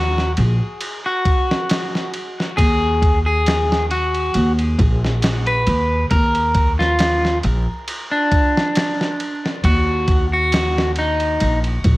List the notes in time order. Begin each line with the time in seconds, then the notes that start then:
Already playing: D#2 F#4
0.18 snare
0.37 A#1, ride
0.81 ride
1.06 F#4
1.25 kick, ride
1.51 snare
1.69 snare, ride
1.95 snare
2.14 ride
2.40 snare
2.57 D#2 G#4, kick, ride
3.02 kick, ride
3.26 G#4
3.46 snare, ride
3.72 snare
3.91 F#4, ride
4.14 ride
4.34 D#2, ride
4.59 ride
4.79 A#1, kick, ride
5.05 snare
5.22 snare, ride
5.47 B4, ride
5.67 D#2, ride
6.11 D#2 A#4, kick, ride
6.35 ride
6.55 kick, ride
6.79 F4, snare
6.99 snare, ride
7.25 snare
7.43 A#1, ride
7.88 ride
8.11 D4
8.31 kick, ride
8.57 snare
8.75 snare, ride
9.01 snare
9.20 ride
9.46 snare
9.64 D#2 F#4, kick, ride
10.08 kick, ride
10.34 F#4
10.52 snare, ride
10.78 snare
10.96 D#4, ride
11.20 ride
11.40 A#1, ride
11.64 ride
11.84 A#1, kick, ride